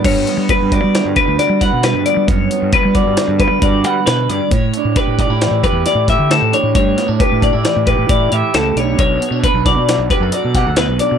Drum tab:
CC |x---------|----------|----------|----------|
HH |xxxxxxxxxx|xxxxxxxxxx|xxxxxxxxxx|xxxxxxxxxx|
SD |----o-ooo-|----o---o-|--o-o-ooo-|-o--o---o-|
BD |o-oo-o-o--|o-oo-oo---|o-oo-o-o--|o-oo-oo---|

CC |----------|
HH |xxxxxxxxxx|
SD |---oo--oo-|
BD |o-oo-o-o--|